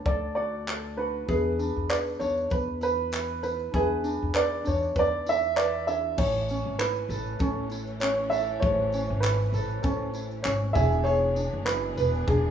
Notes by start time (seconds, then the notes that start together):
Already playing: D4 F#4 B4 F#5
0.05 D2 A4 D5, kick
0.35 F#4 D5
0.67 A4, clap
0.96 D4 F#4 B4 F#5
1.25 E2 D4 G#4 B4, kick, tambourine
1.30 E5
1.59 D4, tambourine
1.76 E2
1.89 B4 D5, clap, tambourine
2.19 E2 D4 C#5, tambourine
2.37 tambourine
2.50 E2 B4, kick, tambourine
2.81 E4 B4, tambourine
3.12 B4, clap, tambourine
3.43 E4 B4, tambourine
3.59 tambourine
3.71 E2 D4 G#4 B4, kick, tambourine
3.76 E5
4.04 D4, tambourine
4.22 E2
4.34 B4 D5, clap, tambourine
4.64 E2 D4 C#5, tambourine
4.83 tambourine
4.96 E2 B4 D5, kick, tambourine
5.26 E4 E5, tambourine
5.42 tambourine
5.56 B4 D5, clap, tambourine
5.87 D4 E4 G#4 E5, tambourine
6.16 A1 E3 A3 C#4 C#5 G#5, kick, crash, tambourine
6.49 C#4, tambourine
6.66 G#1
6.79 E4 B4, clap, tambourine
6.96 tambourine
7.09 A1 A4, tambourine
7.26 tambourine
7.39 A1 C#4 A4, kick, tambourine
7.70 E4, tambourine
7.72 tambourine
7.87 tambourine
8.00 C#4 C#5, clap, tambourine
8.30 A4 E5, tambourine
8.60 A1 A3 G#4 C#5, kick, tambourine
8.64 C5
8.71 C#5
8.92 C#4, tambourine
9.10 G#1
9.20 E4 B4, clap, tambourine
9.40 tambourine
9.53 A1 A4, tambourine
9.71 tambourine
9.82 A1 A3 C#4 A4 C5 G#5, kick, tambourine
9.91 C#5
10.14 E4, tambourine
10.31 tambourine
10.43 G#1 C#4 C#5, clap, tambourine
10.73 E1 E3 G#3 B3 D4 E4 G#4 E5, kick, tambourine
10.77 D4
10.92 tambourine
11.04 G#4 C#5, tambourine
11.35 D4, tambourine
11.53 F#1
11.65 E4 B4, clap, tambourine
11.97 E1 B4, tambourine
12.15 tambourine
12.27 E1 D4 G#4, kick, tambourine